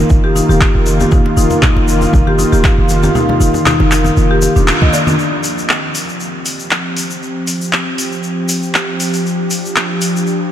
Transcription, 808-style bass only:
0, 0, Header, 1, 2, 480
1, 0, Start_track
1, 0, Tempo, 508475
1, 1055, Time_signature, 4, 2, 24, 8
1, 9930, End_track
2, 0, Start_track
2, 0, Title_t, "808-style bass"
2, 0, Program_c, 0, 38
2, 98, Note_on_c, 0, 29, 83
2, 392, Note_off_c, 0, 29, 0
2, 466, Note_on_c, 0, 27, 88
2, 612, Note_off_c, 0, 27, 0
2, 708, Note_on_c, 0, 29, 89
2, 993, Note_off_c, 0, 29, 0
2, 1294, Note_on_c, 0, 29, 99
2, 1379, Note_off_c, 0, 29, 0
2, 1666, Note_on_c, 0, 29, 97
2, 1952, Note_off_c, 0, 29, 0
2, 2016, Note_on_c, 0, 29, 86
2, 2311, Note_off_c, 0, 29, 0
2, 2385, Note_on_c, 0, 27, 92
2, 2531, Note_off_c, 0, 27, 0
2, 2628, Note_on_c, 0, 29, 88
2, 2913, Note_off_c, 0, 29, 0
2, 3214, Note_on_c, 0, 29, 97
2, 3299, Note_off_c, 0, 29, 0
2, 3588, Note_on_c, 0, 29, 93
2, 3873, Note_off_c, 0, 29, 0
2, 3938, Note_on_c, 0, 29, 86
2, 4232, Note_off_c, 0, 29, 0
2, 4309, Note_on_c, 0, 27, 95
2, 4453, Note_off_c, 0, 27, 0
2, 4549, Note_on_c, 0, 36, 90
2, 4617, Note_off_c, 0, 36, 0
2, 9930, End_track
0, 0, End_of_file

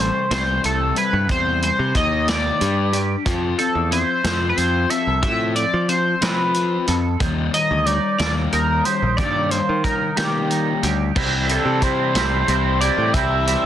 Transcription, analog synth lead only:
0, 0, Header, 1, 2, 480
1, 0, Start_track
1, 0, Tempo, 657895
1, 942, Time_signature, 6, 3, 24, 8
1, 9965, End_track
2, 0, Start_track
2, 0, Title_t, "Analog synth lead"
2, 0, Program_c, 0, 81
2, 1, Note_on_c, 0, 72, 85
2, 232, Note_off_c, 0, 72, 0
2, 235, Note_on_c, 0, 72, 92
2, 453, Note_off_c, 0, 72, 0
2, 478, Note_on_c, 0, 69, 82
2, 694, Note_off_c, 0, 69, 0
2, 714, Note_on_c, 0, 71, 93
2, 931, Note_off_c, 0, 71, 0
2, 957, Note_on_c, 0, 72, 103
2, 1172, Note_off_c, 0, 72, 0
2, 1193, Note_on_c, 0, 72, 95
2, 1410, Note_off_c, 0, 72, 0
2, 1436, Note_on_c, 0, 75, 97
2, 1651, Note_off_c, 0, 75, 0
2, 1668, Note_on_c, 0, 74, 95
2, 2173, Note_off_c, 0, 74, 0
2, 2615, Note_on_c, 0, 69, 75
2, 2839, Note_off_c, 0, 69, 0
2, 2864, Note_on_c, 0, 72, 93
2, 3260, Note_off_c, 0, 72, 0
2, 3279, Note_on_c, 0, 71, 66
2, 3334, Note_on_c, 0, 72, 96
2, 3345, Note_off_c, 0, 71, 0
2, 3572, Note_on_c, 0, 76, 108
2, 3583, Note_off_c, 0, 72, 0
2, 3808, Note_off_c, 0, 76, 0
2, 3813, Note_on_c, 0, 76, 113
2, 4038, Note_off_c, 0, 76, 0
2, 4054, Note_on_c, 0, 74, 95
2, 4279, Note_off_c, 0, 74, 0
2, 4297, Note_on_c, 0, 72, 90
2, 4540, Note_on_c, 0, 71, 88
2, 4551, Note_off_c, 0, 72, 0
2, 5079, Note_off_c, 0, 71, 0
2, 5501, Note_on_c, 0, 75, 103
2, 5732, Note_on_c, 0, 74, 98
2, 5743, Note_off_c, 0, 75, 0
2, 5966, Note_off_c, 0, 74, 0
2, 5971, Note_on_c, 0, 74, 101
2, 6073, Note_off_c, 0, 74, 0
2, 6221, Note_on_c, 0, 70, 91
2, 6455, Note_on_c, 0, 72, 96
2, 6466, Note_off_c, 0, 70, 0
2, 6685, Note_off_c, 0, 72, 0
2, 6690, Note_on_c, 0, 74, 104
2, 6935, Note_on_c, 0, 72, 92
2, 6945, Note_off_c, 0, 74, 0
2, 7174, Note_off_c, 0, 72, 0
2, 7178, Note_on_c, 0, 70, 85
2, 7404, Note_off_c, 0, 70, 0
2, 7418, Note_on_c, 0, 67, 86
2, 7932, Note_off_c, 0, 67, 0
2, 8399, Note_on_c, 0, 69, 81
2, 8630, Note_on_c, 0, 72, 97
2, 8641, Note_off_c, 0, 69, 0
2, 9339, Note_off_c, 0, 72, 0
2, 9344, Note_on_c, 0, 74, 100
2, 9581, Note_on_c, 0, 76, 118
2, 9592, Note_off_c, 0, 74, 0
2, 9965, Note_off_c, 0, 76, 0
2, 9965, End_track
0, 0, End_of_file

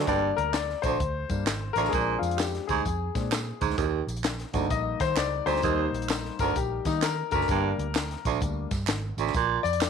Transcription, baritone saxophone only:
0, 0, Header, 1, 2, 480
1, 0, Start_track
1, 0, Key_signature, -2, "minor"
1, 0, Tempo, 463679
1, 79, Time_signature, 4, 2, 24, 8
1, 10246, End_track
2, 0, Start_track
2, 0, Title_t, "Baritone saxophone"
2, 0, Program_c, 0, 67
2, 79, Note_on_c, 0, 43, 85
2, 325, Note_off_c, 0, 43, 0
2, 876, Note_on_c, 0, 38, 75
2, 1010, Note_off_c, 0, 38, 0
2, 1831, Note_on_c, 0, 38, 76
2, 1967, Note_off_c, 0, 38, 0
2, 1999, Note_on_c, 0, 46, 86
2, 2245, Note_off_c, 0, 46, 0
2, 2795, Note_on_c, 0, 44, 78
2, 2929, Note_off_c, 0, 44, 0
2, 3739, Note_on_c, 0, 44, 77
2, 3880, Note_off_c, 0, 44, 0
2, 3907, Note_on_c, 0, 39, 88
2, 4158, Note_off_c, 0, 39, 0
2, 4699, Note_on_c, 0, 38, 73
2, 4840, Note_off_c, 0, 38, 0
2, 5656, Note_on_c, 0, 38, 76
2, 5798, Note_off_c, 0, 38, 0
2, 5830, Note_on_c, 0, 39, 93
2, 6080, Note_off_c, 0, 39, 0
2, 6634, Note_on_c, 0, 38, 80
2, 6769, Note_off_c, 0, 38, 0
2, 7583, Note_on_c, 0, 38, 71
2, 7722, Note_off_c, 0, 38, 0
2, 7766, Note_on_c, 0, 43, 84
2, 8009, Note_off_c, 0, 43, 0
2, 8551, Note_on_c, 0, 38, 77
2, 8686, Note_off_c, 0, 38, 0
2, 9512, Note_on_c, 0, 38, 79
2, 9647, Note_off_c, 0, 38, 0
2, 9690, Note_on_c, 0, 46, 90
2, 9930, Note_off_c, 0, 46, 0
2, 10246, End_track
0, 0, End_of_file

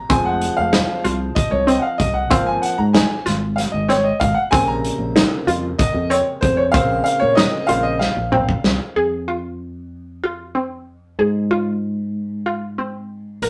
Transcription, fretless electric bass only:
0, 0, Header, 1, 2, 480
1, 0, Start_track
1, 0, Key_signature, -5, "minor"
1, 0, Tempo, 634249
1, 77, Time_signature, 7, 3, 24, 8
1, 10213, End_track
2, 0, Start_track
2, 0, Title_t, "Fretless electric bass"
2, 0, Program_c, 0, 35
2, 77, Note_on_c, 0, 29, 84
2, 349, Note_off_c, 0, 29, 0
2, 441, Note_on_c, 0, 29, 77
2, 621, Note_off_c, 0, 29, 0
2, 793, Note_on_c, 0, 36, 86
2, 975, Note_off_c, 0, 36, 0
2, 1150, Note_on_c, 0, 36, 93
2, 1333, Note_off_c, 0, 36, 0
2, 1513, Note_on_c, 0, 36, 78
2, 1750, Note_off_c, 0, 36, 0
2, 1750, Note_on_c, 0, 32, 87
2, 1933, Note_off_c, 0, 32, 0
2, 2109, Note_on_c, 0, 44, 76
2, 2291, Note_off_c, 0, 44, 0
2, 2473, Note_on_c, 0, 32, 84
2, 2744, Note_off_c, 0, 32, 0
2, 2829, Note_on_c, 0, 32, 94
2, 3102, Note_off_c, 0, 32, 0
2, 3188, Note_on_c, 0, 32, 77
2, 3279, Note_off_c, 0, 32, 0
2, 3426, Note_on_c, 0, 34, 98
2, 3699, Note_off_c, 0, 34, 0
2, 3774, Note_on_c, 0, 34, 85
2, 3961, Note_off_c, 0, 34, 0
2, 4140, Note_on_c, 0, 41, 84
2, 4324, Note_off_c, 0, 41, 0
2, 4499, Note_on_c, 0, 41, 92
2, 4683, Note_off_c, 0, 41, 0
2, 4863, Note_on_c, 0, 41, 77
2, 5104, Note_on_c, 0, 34, 99
2, 5116, Note_off_c, 0, 41, 0
2, 5286, Note_off_c, 0, 34, 0
2, 5463, Note_on_c, 0, 46, 87
2, 5646, Note_off_c, 0, 46, 0
2, 5825, Note_on_c, 0, 34, 81
2, 6098, Note_off_c, 0, 34, 0
2, 6181, Note_on_c, 0, 34, 94
2, 6456, Note_off_c, 0, 34, 0
2, 6540, Note_on_c, 0, 36, 81
2, 6634, Note_off_c, 0, 36, 0
2, 6782, Note_on_c, 0, 41, 51
2, 8439, Note_off_c, 0, 41, 0
2, 8466, Note_on_c, 0, 44, 59
2, 10126, Note_off_c, 0, 44, 0
2, 10156, Note_on_c, 0, 34, 56
2, 10213, Note_off_c, 0, 34, 0
2, 10213, End_track
0, 0, End_of_file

